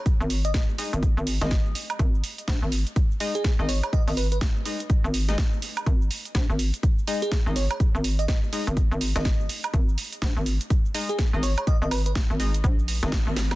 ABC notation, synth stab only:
X:1
M:4/4
L:1/16
Q:"Swing 16ths" 1/4=124
K:G#m
V:1 name="Synth stab"
z6 [G,Dd] z4 [G,Dd] z4 | z8 z2 [G,Dd] z2 [G,Dd] z2 | z6 [G,Dd] z4 [G,Dd] z4 | z8 z2 [G,Dd] z2 [G,Dd] z2 |
z6 [G,Dd] z4 [G,Dd] z4 | z8 z2 [G,Dd] z2 [G,Dd] z2 | z6 [G,Dd] z4 [G,Dd] z4 |]